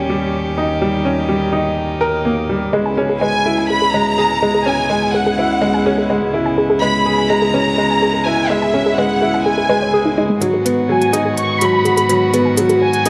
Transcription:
Already playing: D#2 D#3 G3 C#4 G4
0.09 G3
0.58 D#4
0.82 G3 D#4
1.05 C#4
1.29 G3
1.52 D#4
2.01 A#4
2.25 A#3
2.49 G3
2.73 C#2 C#3 G#3 B3 E4 G#4
2.86 G#5
2.97 C#4 G#4
3.09 G#4
3.21 G#3 B4 G#5
3.46 E4 G#4
3.58 G#5
3.69 G#4 B5
3.82 G#4
3.94 G#3 B4 A#5
4.18 G#4
4.30 G#5
4.42 G#3 G#4
4.54 G#4
4.66 C#4 B4 G#5
4.90 G#3 G#4
5.02 G#5
5.13 G#4 F#5
5.26 G#4
5.38 E4 B4
5.62 G#3 G#4
5.74 G#5
5.86 C#4 G#4
5.98 G#4
6.10 G#3 B4
6.33 E4 G#4
6.46 G#5
6.58 G#4
6.70 G#4
6.82 G#3 B4 B5
7.06 G#4
7.18 G#5
7.29 G#3 G#4 A#5
7.42 G#4
7.54 C#4 B4
7.78 G#3 G#4
7.90 G#5
8.02 G#4
8.14 G#4
8.25 E4 B4 G#5
8.49 G#3 G#4 E5
8.62 G#5
8.74 C#4 G#4
8.86 G#4
8.97 G#3 B4 F#5
9.22 E4 G#4
9.34 G#5
9.45 G#4 G#5
9.58 G#4
9.69 G#3 B4
9.82 C#5
9.93 G#4
10.05 D#4
10.18 G#3 D#4
10.30 G#3
10.41 G#2 D#3 F#3 B3 F#4 G#4, closed hi-hat
10.54 G#4
10.65 B3 B4, closed hi-hat
10.89 F#3 G#4 G#5
11.01 G#5, closed hi-hat
11.13 D#4 G#4, closed hi-hat
11.25 G#4
11.37 B4 C#6, closed hi-hat
11.61 F#3 G#4 B5, closed hi-hat
11.73 G#5
11.85 F#4 G#4, closed hi-hat
11.97 G#4, closed hi-hat
12.09 F#3 B4, closed hi-hat
12.33 B3 G#4, closed hi-hat
12.45 G#5
12.57 F#3 G#4, closed hi-hat
12.69 G#4, closed hi-hat
12.81 B4 G#5
12.93 closed hi-hat
13.06 D#4 G#4, closed hi-hat

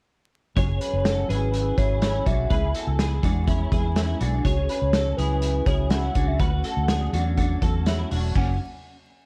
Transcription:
0.56 F#1 F#2 C#3 F#3 C#4 F#4 G#4 C#5, kick, closed hi-hat
0.68 F#3 C#4 F#4 G#4
0.81 G#4 B4, closed hi-hat
0.93 F#1
1.05 F#4 A4, snare, closed hi-hat
1.28 G#1 F#3 C#4 E4 F#4 G#4 B4, closed hi-hat
1.54 closed hi-hat
1.77 G#1 F#3 C#4 E4 F#4 G#4 C#5, kick, closed hi-hat
2.01 F#3 C#4 E4 F#4 G#4 C#5, snare, closed hi-hat
2.25 B1 F#3 C#4 D4 F#4 G#4 E5, kick, closed hi-hat
2.49 C#2 C#3 G#3 B3 E4 G#4 B4, kick, closed hi-hat
2.61 B3 E4 G#4
2.75 F#4 A4, closed hi-hat
2.87 C#2
2.99 E4 G#4, snare, closed hi-hat
3.23 E2 G#3 B3 D4 E4 F#4 G#4, kick, closed hi-hat
3.47 C#4 E4, kick, closed hi-hat
3.70 E2 G#3 B3 E4 G#4, kick, closed hi-hat
3.95 G#3 B3 C#4 E4 G#4, snare, closed hi-hat
4.19 B1 G#3 B3 D4 E4 F#4 G#4, closed hi-hat
4.44 C#2 C#3 F#3 C#4 F#4 G#4 C#5, kick, closed hi-hat
4.56 C#4 F#4 G#4
4.69 G#4 B4, closed hi-hat
4.82 C#2
4.93 F#4 A4, snare, closed hi-hat
5.17 C#2 F#3 C#4 E4 F#4 G#4 B4, closed hi-hat
5.21 G#4
5.42 closed hi-hat
5.65 C#2 F#3 C#4 E4 F#4 G#4 C#5, kick, closed hi-hat
5.89 F#3 C#4 E4 F#4 G#4 F#5, snare, closed hi-hat
6.14 C#2 F#3 C#4 D4 F#4 G#4, kick, closed hi-hat
6.28 E5
6.39 D2 D3 F#3 A3 C#4 F#4 B4 F#5, kick, closed hi-hat
6.51 A3 C#4 F#4
6.64 F#4 A4, closed hi-hat
6.77 D2
6.88 D4 G#4, snare, closed hi-hat
7.12 E2 F#3 A3 C#4 D4 F#4, closed hi-hat
7.37 D4 F#4, kick, closed hi-hat
7.61 E2 F#3 A3 C#4 F#4 A4, kick, closed hi-hat
7.86 F#3 A3 C#4 E4 F#4, snare, closed hi-hat
8.10 E1 F#3 A3 C#4 D4 F#4, open hi-hat
8.35 F#1 F#2 C#3 F#3 A#3 C#4 F#4 F#5, kick, crash

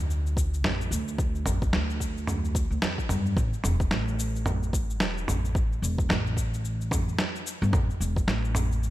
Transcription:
Already playing: D2
0.11 shaker
0.27 shaker
0.37 kick, shaker
0.54 shaker
0.64 A1, snare, mid tom, shaker
0.81 shaker
0.91 D2, shaker
1.08 shaker
1.19 kick, shaker
1.35 shaker
1.46 A1, mid tom, shaker
1.62 kick, shaker
1.73 D2, snare, shaker
1.90 shaker
2.00 kick, shaker
2.18 shaker
2.27 mid tom, shaker
2.45 shaker
2.55 kick, shaker
2.71 D2, shaker
2.82 F2, snare, shaker
2.98 kick, shaker
3.09 G2, mid tom, shaker
3.26 shaker
3.36 A1, kick, shaker
3.53 shaker
3.64 E1, mid tom, shaker
3.80 kick, shaker
3.91 A1, snare, shaker
4.08 shaker
4.19 shaker
4.36 shaker
4.46 mid tom, shaker
4.63 shaker
4.73 kick, shaker
4.90 shaker
5.00 E1, snare, shaker
5.18 shaker
5.28 A1, mid tom, shaker
5.45 shaker
5.55 kick, shaker
5.73 shaker
5.82 E1, shaker
5.98 kick, shaker
6.09 A1, snare, mid tom, shaker
6.27 shaker
6.37 kick, shaker
6.54 shaker
6.65 shaker
6.81 shaker
6.91 kick, mid tom, shaker
7.09 shaker
7.19 snare, shaker
7.36 shaker
7.47 shaker
7.62 G1, shaker
7.73 A1, kick, mid tom, shaker
7.90 shaker
8.00 E1, shaker
8.16 kick, shaker
8.27 A1, snare, shaker
8.45 shaker
8.55 mid tom, shaker
8.72 shaker
8.83 shaker

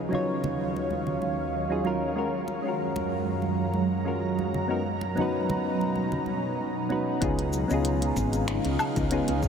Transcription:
Already playing: D#2 D#3 F#3 C#5 F5
0.09 F#3 C#4 D#4, low conga
0.13 F4 C#5
0.44 muted conga, high conga, low conga
0.76 muted conga
0.90 high conga
1.07 low conga
1.22 high conga
1.69 F#3 C#4 D#4 F4 G#4
1.84 F#3 C#4 D#4 F4 A#4, high conga
2.15 F#2 G#3 C#4 F4 F#4 A#4 A#5
2.48 muted conga
2.62 G#3 C#4 F4
2.67 F#4 A#4
2.96 muted conga, high conga
3.42 high conga
3.74 high conga
4.05 G#3 C#4 F4 F#4 A#4
4.39 high conga
4.54 low conga
4.68 B2 B3 C#4 D#4 F#4 A#4
5.01 muted conga
5.15 B3 C#4 D#4, low conga
5.20 F#4 B4
5.49 muted conga, high conga, low conga
5.81 muted conga
5.95 high conga
6.12 low conga
6.26 high conga
6.89 B3 C#4 D#4 F#4 B4, high conga
7.21 C#2 C#3 G#3 B3 C#4 D#4 F4 G#4 F5, kick, closed hi-hat, cabasa
7.39 closed hi-hat
7.53 cabasa
7.68 C#2 B3 C#4 D#4, cabasa
7.72 F4 G#4
7.85 closed hi-hat, cabasa
8.02 closed hi-hat
8.16 G#1, kick, cabasa
8.33 closed hi-hat, cabasa
8.48 finger snap, closed hi-hat
8.65 C#2, closed hi-hat
8.79 cabasa, low woodblock
8.96 C#2, kick, closed hi-hat, cabasa
9.10 B3 C#4 D#4 F4 G#4, closed hi-hat, cabasa
9.28 C#2, closed hi-hat
9.43 kick, cabasa

